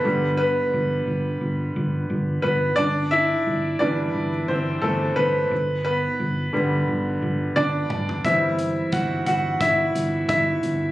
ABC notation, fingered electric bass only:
X:1
M:4/4
L:1/8
Q:"Swing 16ths" 1/4=88
K:G
V:1 name="Fingered electric bass" clef=bass
G,,,2 G,,, G,,, G,,, G,,, G,,, G,,, | G,,,2 G,,, G,,, G,,, G,,, G,,, G,,, | G,,,2 G,,, G,,, G,,, G,,, G,,, G,,, | G,,,2 G,,, G,,, G,,, G,,, G,,, G,,, |]